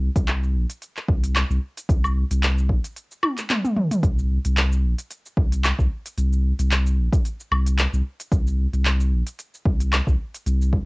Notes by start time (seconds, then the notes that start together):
0.16 C2, kick, open hi-hat, cabasa
0.28 clap, open hi-hat, cabasa
0.44 cabasa
0.55 A#1
0.70 open hi-hat, cabasa
0.82 open hi-hat, cabasa
0.97 clap, cabasa
1.08 C2, kick
1.24 open hi-hat, cabasa
1.36 clap, open hi-hat, cabasa, low woodblock
1.50 C2, cabasa
1.77 open hi-hat, cabasa
1.89 C2, kick, open hi-hat, cabasa
2.04 cabasa, low woodblock
2.31 C2, open hi-hat, cabasa
2.43 clap, open hi-hat, cabasa
2.58 cabasa
2.69 A#1, kick
2.84 open hi-hat, cabasa
2.96 open hi-hat, cabasa
3.12 cabasa
3.23 high tom, low woodblock
3.38 clap, open hi-hat, cabasa
3.50 clap, open hi-hat, mid tom, cabasa
3.65 mid tom, cabasa
3.77 mid tom
3.92 mid tom, open hi-hat, cabasa
4.03 C2, kick, open hi-hat, cabasa
4.19 cabasa
4.45 C2, open hi-hat, cabasa
4.57 clap, open hi-hat, cabasa
4.72 cabasa
4.84 A#1
4.99 open hi-hat, cabasa
5.11 open hi-hat, cabasa
5.26 cabasa
5.37 C2, kick
5.52 open hi-hat, cabasa
5.64 clap, open hi-hat, cabasa, low woodblock
5.79 C2, kick, cabasa
6.06 open hi-hat, cabasa
6.18 C2, open hi-hat, cabasa
6.33 cabasa
6.59 C2, open hi-hat, cabasa
6.71 clap, open hi-hat, cabasa
6.86 cabasa
6.98 A#1
7.12 kick, open hi-hat, cabasa
7.25 open hi-hat, cabasa
7.40 cabasa
7.51 C2, low woodblock
7.66 open hi-hat, cabasa
7.78 clap, open hi-hat, cabasa
7.93 C2, cabasa
8.20 open hi-hat, cabasa
8.32 C2, kick, open hi-hat, cabasa
8.47 cabasa
8.73 C2, open hi-hat, cabasa
8.86 clap, open hi-hat, cabasa
9.01 cabasa
9.12 A#1
9.27 open hi-hat, cabasa
9.39 open hi-hat, cabasa
9.54 cabasa
9.66 C2, kick
9.80 open hi-hat, cabasa
9.93 clap, open hi-hat, cabasa, low woodblock
10.07 C2, kick, cabasa
10.35 open hi-hat, cabasa
10.46 C2, open hi-hat, cabasa
10.62 cabasa
10.73 kick